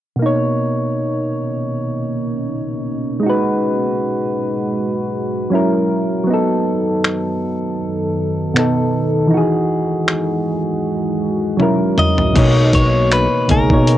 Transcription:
0.16 B2 A#3
0.20 B2 A#3 C#4 D#4
0.26 C#5
3.20 G#3 D#4
3.24 G#3 F#4
3.29 B4
5.50 F#3 C#4 E4
5.55 A#4
6.24 F#3 B3
6.28 F#2 D#3 B3 D#4 A4
6.33 A4
7.04 finger snap
8.54 B2 B3 D#4, finger snap
8.59 A4
9.27 E3 D#4
9.32 E3 G#3 D#4 F#4
9.37 G#4
10.08 finger snap
11.57 F#3 C#4 E4, high tom
11.62 A#4
11.98 D#5, mid tom
12.18 floor tom
12.33 B1 B2 C#3 A#3 C#4 D#4, kick, closed hi-hat, crash
12.38 C#5
12.73 C#5, kick, closed hi-hat
13.12 B4, finger snap, closed hi-hat
13.48 C#2 B2 A#3 D#4 A#4, kick, closed hi-hat
13.53 G#4
13.69 B2 A#3 D#4, kick
13.73 C#5
13.87 closed hi-hat

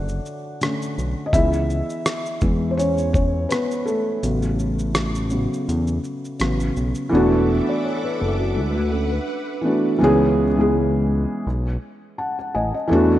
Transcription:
Already playing: F#1 D3 A3 D4 F#4 C#5 D5 F#5
0.09 shaker
0.26 shaker
0.61 D3 A3 C#4, cross-stick, closed hi-hat, shaker
0.82 shaker
0.98 B1, shaker
1.26 D#5
1.33 C#2 E3 B3 E4 G#4 E5, kick, closed hi-hat, shaker
1.53 shaker
1.70 shaker
1.90 shaker
2.06 cross-stick, closed hi-hat, shaker
2.26 shaker
2.41 E2 E3 G#3 B3, kick, shaker
2.71 C5
2.77 C#4 C#5, closed hi-hat, shaker
2.98 shaker
3.13 C#4 C#5, kick, shaker
3.49 B3 B4, cross-stick, closed hi-hat, shaker
3.71 shaker
3.86 A3 A4, shaker
4.23 A1 C#3 F#3 B3, closed hi-hat, shaker
4.42 shaker
4.59 shaker
4.79 shaker
4.95 cross-stick, closed hi-hat, shaker
5.15 shaker
5.30 C#3 F#3 B3, shaker
5.53 shaker
5.68 E2, closed hi-hat, shaker
5.87 shaker
6.04 shaker
6.25 shaker
6.39 A1 C#3 F#3 B3, cross-stick, closed hi-hat, shaker
6.60 shaker
6.77 B1, shaker
6.95 shaker
7.09 E1 E3 A3 B3 D4 A4 E5 F#5 D6
7.15 F#4
7.69 D5
7.83 C#5
8.04 B4
8.20 F#1 A4
8.39 F#4
8.56 D2 G#3 E4 B4 F#5
8.76 A3 F#4
8.92 C#4 A4
9.13 D4 B4
9.61 E3 A3 B3 D4
9.67 F#4
9.99 C#2 E3 G#3 B3
10.03 C#4 G#4
10.56 E3 G#3 B3
10.60 C#4 G#4
11.47 B1
12.18 F#5 A5
12.39 F#5
12.55 A1 D#5 G#5
12.74 D#5
12.88 E2 E3 A3 B3 D4
12.93 F#4

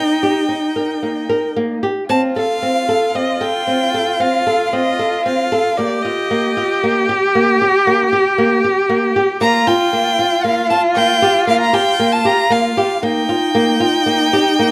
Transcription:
Already playing: D#4 G5
0.23 G4
0.49 D#4
0.76 A#4
1.03 A#3
1.29 A#4
1.56 A#3
1.83 G4
2.08 C4 F4 A5
2.36 A4 F5
2.62 C4
2.89 A4
3.15 C4 D#5
3.41 A4 G5
3.67 C4
3.94 A4
4.20 C4 F5
4.47 A4
4.66 F5
4.73 C4 D#5
4.99 A4
5.26 C4 F5
5.52 A4
5.77 A#3 G4 D5
6.03 F4 D#5
6.31 A#3
6.57 F4
6.83 A#3
7.09 G4
7.35 A#3
7.62 G4
7.87 A#3
8.13 G4
8.38 A#3
8.64 G4
8.89 A#3
9.16 G4
9.41 A#3 F4 A#5
9.67 F4 G5
9.93 A#3
10.19 F4
10.43 A#3 F5
10.70 F4 A5
10.96 A#3 G5
11.22 G4
11.47 A#3 F5
11.60 A#5
11.73 G4 G5
11.99 A#3
12.12 A5
12.25 G4 A#5
12.50 A#3 F5
12.77 G4
13.03 A#3 D#4 G5
13.29 F4
13.55 A#3
13.80 F4
14.06 A#3
14.33 G4
14.59 A#3

